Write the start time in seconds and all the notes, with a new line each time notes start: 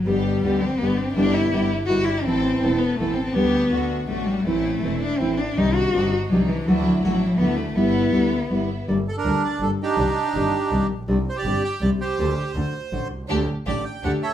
0.05 G1 B2 D3 G3 B3 D4 G4
0.43 D2 B2 D3 G3 B3 D4 G4
0.60 C4
0.78 G1 B2 D3 G3 B3 D4 G4
0.97 C4
1.13 G1 B2 D3 G3 B3 D4 E4 G4
1.33 E4
1.52 G1 B2 D3 G3 B3 D4 E4 G4
1.86 G1 B2 D3 G3 B3 D4 E4 F#4 G4
2.04 E4
2.22 A1 E3 C4 A4
2.27 C4 E4
2.62 E1 E3 B3 C4 E4 A4
2.78 B3
2.95 A1 A3 B3 C4 A4
2.99 E3 B3 E4
3.12 C4
3.23 C4
3.33 D2 D3 G3 B3 D4 G4
3.71 D2 D3 A3 D4 F#4
4.07 A1 D3 A3 D4 F#4
4.25 G3
4.44 A1 E3 A3 C4 E4
4.83 E1 E3 A3 C4 E4
5.01 D4
5.17 A1 E3 A3 C4 E4
5.37 D4
5.56 C2 C3 D#3 G3 C4 D4 D#4 G4
5.74 F#4
5.94 G1 C3 D#3 G3 C4 D4 D#4 G4
6.28 C2 C3 D#3 F#3 G3 C4 D4 D#4
6.32 G4
6.47 E3
6.66 D2 D3 F#3 A3 D4 E4 F#4
6.83 F#3
7.03 A1 D3 F#3 A3 D4 E4 F#4
7.38 D2 D3 F#3 A3 B3 D4 E4 F#4
7.56 A3
7.75 G1 G3 B3 E4
8.12 D2 G3 B3 E4
8.50 G1 G3 B3 E4
8.88 G1 D3 G3 A#3 D4 A4
9.08 A4
9.17 D4 A#4
9.24 D2 D3 G3 A#3 D4 A4
9.45 D5
9.60 G1 D3 G3 A#3 D4 A4
9.82 D4 D#4 G4
9.97 C2 C3 D#3 G3 D4 G4
10.35 G1 C3 D#3 G3 D4 G4
10.71 C2 C3 D#3 G3 D4 G4
10.89 A#1
11.07 C2 C3 G3 C4 D4 G4
11.29 C5
11.36 G4 D5
11.44 G1 C3 G3 C4 D4 G4
11.65 G5
11.81 C2 C3 G3 C4 D4 G4 D5
12.00 C2 G4 C5
12.18 D2 D3 A#3 D4 G4
12.55 D2 D3 A3 D4 F#4
12.92 A1 D3 A3 D4 F#4
13.12 C2
13.29 D2 D3 A3 D4 G4
13.67 A1 D3 A3 D4 G4 D5
13.85 G5
14.03 D2 D3 A3 D4 G4 F#5
14.22 A4 C#5 E5